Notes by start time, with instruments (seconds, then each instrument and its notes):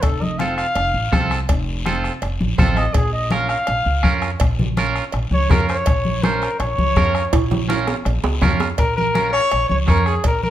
0.02 upright bass F1, trumpet A4, bombo low, bombo rim, cowbell, high conga, long guiro
0.22 trumpet D#5, high conga
0.38 clean electric guitar C4 F4 A4, trumpet F5, bombo rim, high conga, short guiro
0.57 trumpet F5, bombo rim, short guiro
0.75 upright bass F1, bombo rim, cowbell, high conga, long guiro
0.94 upright bass A1
1.12 upright bass C2, clean electric guitar C4 F4 A4, bombo low, bombo rim, high conga, low timbale, short guiro
1.31 bombo rim, short guiro
1.49 upright bass F1, bombo low, bombo rim, cowbell, high conga, long guiro
1.86 clean electric guitar C4 F4 A4, bombo rim, high conga, short guiro
2.04 bombo rim, short guiro
2.22 upright bass F1, bombo rim, cowbell, high conga, long guiro
2.40 upright bass A1, high conga
2.58 upright bass A1, clean electric guitar C4 F4 A4, bombo low, bombo rim, high conga, low conga, low timbale, short guiro
2.76 trumpet D#5, bombo rim, short guiro
2.94 upright bass A#1, trumpet G#4, bombo low, bombo rim, cowbell, high conga, long guiro
3.13 trumpet D#5
3.31 clean electric guitar C#4 F4 A#4, trumpet F5, bombo rim, high conga, short guiro
3.49 trumpet F5, bombo rim, short guiro
3.67 upright bass A#1, bombo rim, cowbell, high conga, long guiro
3.86 upright bass C#2
4.03 upright bass F2, clean electric guitar C#4 F4 A#4, bombo low, bombo rim, high conga, short guiro
4.22 bombo rim, short guiro
4.40 upright bass A#1, bombo low, bombo rim, cowbell, high conga, long guiro
4.59 high conga, low conga
4.77 clean electric guitar C#4 F4 A#4, bombo rim, high conga, short guiro
4.96 bombo rim, short guiro
5.12 upright bass A#1, bombo rim, cowbell, high conga, long guiro
5.31 upright bass C#2, trumpet C#5, high conga
5.50 upright bass F2, clean electric guitar C#4 F4 A#4, trumpet A#4, bombo low, bombo rim, high conga, low conga, low timbale, short guiro
5.69 trumpet C#5, bombo rim, short guiro
5.86 upright bass A#1, bombo low, bombo rim, cowbell, high conga, long guiro
6.05 high conga
6.23 clean electric guitar C#4 F4 C5, trumpet A#4, bombo rim, high conga, short guiro
6.42 bombo rim, short guiro
6.59 upright bass A#1, trumpet C#5, bombo rim, cowbell, high conga, long guiro
6.78 upright bass C#2, high conga
6.96 upright bass F2, clean electric guitar C#4 F4 A#4, bombo low, bombo rim, high conga, low timbale, short guiro
7.15 bombo rim, short guiro
7.33 upright bass A#1, bombo low, bombo rim, cowbell, high conga, high timbale, long guiro
7.51 high conga, low conga, high timbale
7.69 clean electric guitar C#4 F4 A#4, bombo rim, high conga, high timbale, short guiro
7.87 bombo rim, low timbale, short guiro
8.05 upright bass A#1, bombo rim, cowbell, high conga, long guiro
8.24 upright bass C#2, low timbale
8.41 upright bass F2, clean electric guitar C#4 F4 A#4, bombo low, bombo rim, high conga, low conga, low timbale, short guiro
8.60 bombo rim, low timbale, short guiro
8.78 upright bass A#1, trumpet A#4, bombo low, bombo rim, cowbell, high conga, long guiro
8.97 trumpet A#4, high conga
9.15 clean electric guitar C#4 F4 A#4, bombo rim, high conga, short guiro
9.33 trumpet C#5, bombo rim, short guiro
9.51 upright bass A#1, bombo rim, cowbell, high conga, long guiro
9.69 upright bass C#2, trumpet C#5, high conga
9.87 upright bass F2, clean electric guitar C#4 F4 C#5, trumpet A#4, bombo low, bombo rim, high conga, low timbale, short guiro
10.06 trumpet G#4, bombo rim, short guiro
10.24 upright bass A#1, trumpet A#4, bombo low, bombo rim, cowbell, high conga, long guiro
10.43 trumpet A#4, high conga